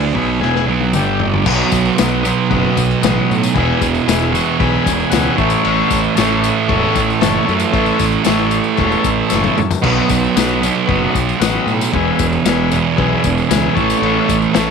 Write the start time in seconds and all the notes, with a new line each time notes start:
Already playing: D2 D3 A3 D4
0.14 B1 B2 F#3 B3 G#4 B4 E5 B5, kick
0.40 E1 E2 B2 E3 G#4 B4 E5 G#5, snare
0.55 snare
0.66 B1 B2 F#3 F#5
0.70 B3
0.81 high tom
0.93 G1 G2 D3 G3 G4 D5 E5 G5, mid tom, tambourine
1.20 D5, floor tom
1.34 floor tom
1.45 B1 B2 F#3 F#4 B4 D#5, kick, crash
1.50 B3
1.72 B1, kick, tambourine
1.85 tambourine
1.98 B1 F#4 B4 D#5, snare, tambourine, crash
2.23 F#3 B3, tambourine
2.28 B2
2.49 F#1 F#4 B4 D#5, kick, crash
2.77 B1, kick, tambourine
2.91 tambourine
3.02 A1 F#4 B4 D#5, snare, tambourine, crash
3.31 A2, tambourine
3.43 tambourine
3.54 E1 E2 B2 G#4 B4 E5, kick, crash
3.59 E3
3.82 E1, kick, tambourine
3.95 tambourine
4.07 E1 G#4 B4 E5, snare, tambourine, crash
4.32 B2 E3 C#6, tambourine
4.37 E2
4.59 B1 G#4 B4 E5 B5, kick, crash
4.84 E1 G#5, kick, tambourine
5.00 tambourine
5.10 C#2 G#4 B4 E5 F#5, snare, tambourine, crash
5.36 A1 A2 E3 A4 C#5 E5, kick, tambourine
5.41 A3
5.50 tambourine
5.65 A1, crash
5.90 A1, kick, tambourine
6.04 tambourine
6.15 A1 A2 E3 A4 C#5 E5, snare, tambourine, crash
6.20 A3
6.44 tambourine
6.68 E1 A4 C#5 E5, kick, crash
6.96 A1, kick, tambourine
7.10 tambourine
7.20 F#1 A4 C#5 E5, snare, tambourine, crash
7.46 F#2 A2 E3, tambourine
7.50 A3
7.60 tambourine
7.72 A1 A4 C#5 E5, kick, tambourine, crash
7.86 tambourine
7.99 A1, kick, tambourine
8.12 tambourine
8.24 A1 A2 E3 A4 C#5 E5, snare, tambourine, crash
8.29 A3
8.51 tambourine
8.64 tambourine
8.75 E1 A4 C#5 E5, kick, tambourine
8.79 crash
8.92 tambourine
9.04 A1, kick, tambourine
9.27 A4 C#5 E5, tambourine
9.32 F#1, snare
9.43 high tom, tambourine
9.58 F#2, mid tom, tambourine
9.71 floor tom, tambourine
9.82 B1 B2 F#3 B3 F#4 B4 D#5, kick, crash
10.10 B1, kick, tambourine
10.24 tambourine
10.35 B1 F#4 B4 D#5, snare, tambourine, crash
10.61 F#3 B3, tambourine
10.65 B2
10.86 F#1 F#4 B4 D#5, kick, crash
11.15 B1, kick, tambourine
11.29 tambourine
11.39 A1 F#4 B4 D#5, snare, tambourine, crash
11.66 A2, tambourine
11.81 tambourine
11.92 E1 E2 B2 G#4 B4 E5, kick, crash
11.96 E3
12.19 E1, kick, tambourine
12.33 tambourine
12.45 E1 G#4 B4 E5, snare, tambourine, crash
12.71 B2 E3, tambourine
12.76 E2
12.96 B1 G#4 B4 E5, kick, crash
13.24 E1, kick, tambourine
13.38 tambourine
13.48 C#2 G#4 B4 E5, snare, tambourine, crash
13.74 A1 A2 A4 C#5 E5, kick, tambourine
13.79 E3 A3
13.90 tambourine
14.02 A1, crash
14.29 A1, kick, tambourine
14.42 tambourine
14.53 A1 A2 A4 C#5 E5, snare, tambourine, crash
14.58 E3 A3